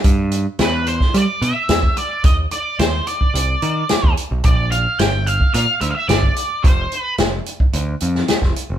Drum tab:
HH |x-x-x-x-x-x-x-x-|x-x-x-x-x-x-x-x-|x-x-x-x-x-x-x-x-|x-x-x-x-x-x-x-x-|
SD |----o--o----o---|----o-------o---|----o-------o---|----o------ooo--|
BD |o------o-----o--|o------o-----o--|o------o-----o--|o------o-----o--|